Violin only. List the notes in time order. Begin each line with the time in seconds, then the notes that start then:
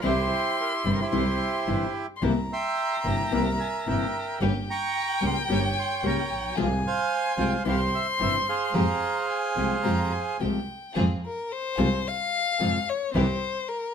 0.03 C6
1.13 C6
2.16 C6
2.24 A#5
4.41 G5
6.57 G#5
7.66 C6
8.67 C6
8.74 A#5
9.29 G#5
9.84 A#5
10.12 G#5
10.41 G5
11.26 A#4
11.52 C5
12.08 F5
12.89 C#5
13.15 C5
13.69 A#4